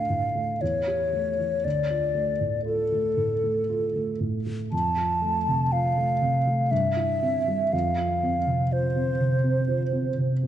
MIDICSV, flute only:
0, 0, Header, 1, 2, 480
1, 0, Start_track
1, 0, Key_signature, -1, "minor"
1, 0, Tempo, 1027397
1, 770, Time_signature, 3, 2, 24, 8
1, 2207, Tempo, 1001669
1, 3647, Tempo, 983607
1, 4986, End_track
2, 0, Start_track
2, 0, Title_t, "Flute"
2, 0, Program_c, 0, 73
2, 0, Note_on_c, 0, 77, 39
2, 286, Note_on_c, 0, 73, 39
2, 293, Note_off_c, 0, 77, 0
2, 768, Note_on_c, 0, 74, 41
2, 775, Note_off_c, 0, 73, 0
2, 1238, Note_off_c, 0, 74, 0
2, 1241, Note_on_c, 0, 69, 39
2, 1954, Note_off_c, 0, 69, 0
2, 2204, Note_on_c, 0, 81, 47
2, 2685, Note_on_c, 0, 77, 49
2, 2692, Note_off_c, 0, 81, 0
2, 3159, Note_on_c, 0, 76, 48
2, 3166, Note_off_c, 0, 77, 0
2, 3645, Note_on_c, 0, 77, 47
2, 3652, Note_off_c, 0, 76, 0
2, 4133, Note_on_c, 0, 72, 46
2, 4140, Note_off_c, 0, 77, 0
2, 4845, Note_off_c, 0, 72, 0
2, 4986, End_track
0, 0, End_of_file